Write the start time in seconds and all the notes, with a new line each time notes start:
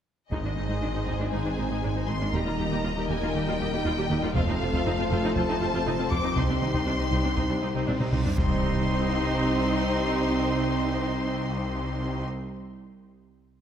0.31 G#1 G#2 D#3 G#3 C4 D#4 G#4 C5 D#5, taiko
0.44 G#2 G#3 D4 D#4
0.56 G#1 G#2 G#3 C4 D#4
0.69 G#2 G#3 D#4
0.81 G#1 G#2 G#3 D4 D#4
0.94 G#2 G#3 D#4
1.07 G#1 G#2 G#3 D#4, taiko
1.19 G#2 G#3 D4 G#4
1.32 G#1 G#2 G#3 D#4 G#5
1.44 G#2 G#3 D4 D#4
1.57 G#1 G#2 G#3 D#4 G#4
1.70 G#2 G#3 D#4
1.82 G#1 G#2 G#3 D4 G#4
1.95 G#2 G#3 D#4
2.07 G#1 G#2 G#3 D#4 C6
2.20 G#2 G#3 D4 D#4
2.33 D#1 D#2 D#3 G3 A#3 G4 A#4 D#5 A#5
2.46 D#2 G3 A#3 F4
2.58 D#2 G3 G4
2.71 D#2 D#3 G3 G4
2.83 D#2 G3 A#3 F4
2.96 D#2 G3 A#3 G4
3.09 D#2 D#3 G3 G4 G#5
3.21 D#2 G3 D#4 F4
3.34 D#2 D#3 G3 G4 G5
3.47 D#2 G3 A#3 F4
3.59 D#2 G3 D#4 G4
3.72 D#2 D#3 G3 G4
3.85 D#2 G3 D#4 F4
3.97 D#2 G3 A#3 G4
4.10 D#2 D#3 G3 G4
4.22 D#2 G3 A#3 F4
4.34 F1 F2 C3 F3 A3 C4 F4 A4 C5 F5, taiko
4.47 F2 C4 D#4
4.60 F1 F2 A3 C4 F4
4.73 F2 F3 C4 F4, taiko
4.85 F1 F2 C4 D#4
4.98 F2 C4 F4
5.11 F1 F2 F3 C4 F4
5.23 F2 C4 D#4 F4
5.35 F1 F2 F3 C4 F4 A5, taiko
5.48 F2 C4 D#4
5.61 F1 F2 C4 F4
5.74 F2 F3 C4 F4
5.86 F1 F2 C4 D#4 F4
5.98 F2 C4 F4
6.11 F1 F2 F3 C4 F4 D6, taiko
6.23 F2 C4 D#4
6.36 C2 C3 G3 C4 D#4 G4 C6, taiko, reverse cymbal
6.49 C2 G3 C4 D4
6.61 C2 D#3 C4 D#4
6.73 C2 C3 C4 D#4, taiko
6.87 C2 G3 C4 D4
6.99 C2 G3 C4 D#4
7.11 C2 C3 C4 D#4
7.24 C2 C4 D4
7.36 C2 C3 C4 D#4, taiko
7.49 C2 G3 C4 D4
7.61 C2 C4 D#4
7.75 C2 C3 C4 D#4
7.87 C2 C4 D4, taiko low-mid
8.00 C2 G3 C4 D#4, taiko low-mid
8.12 C2 C3 C4 D#4, taiko low-mid
8.25 C2 G3 C4 D4, taiko low
8.38 C2 C3 G3 C4 D#4 G4 C5 C6, taiko, impact